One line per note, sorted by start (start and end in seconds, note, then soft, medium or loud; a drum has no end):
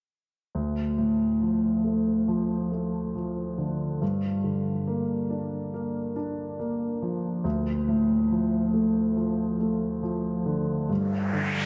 0.55 3.98 D2 soft
0.98 2.68 A2 soft
1.42 2.26 F3 soft
1.84 2.70 A3 soft
2.28 3.14 F3 soft
2.72 3.97 A3 soft
3.15 3.99 F3 soft
3.58 4.00 D3 soft
4.02 7.41 G2 medium
4.44 6.12 D3 soft
4.87 5.72 A#3 soft
5.30 6.15 D4 soft
5.74 6.58 A#3 soft
6.16 7.41 D4 soft
6.59 7.43 A#3 soft
7.02 7.44 F3 soft
7.44 10.86 D2 medium
7.88 9.56 A2 soft
8.31 9.15 F3 soft
8.73 9.58 A3 soft
9.16 10.01 F3 soft
9.60 10.86 A3 soft
10.03 10.87 F3 soft
10.46 10.88 D3 soft
10.89 11.66 G2 medium
10.89 noise sweep medium
11.33 11.66 D3 soft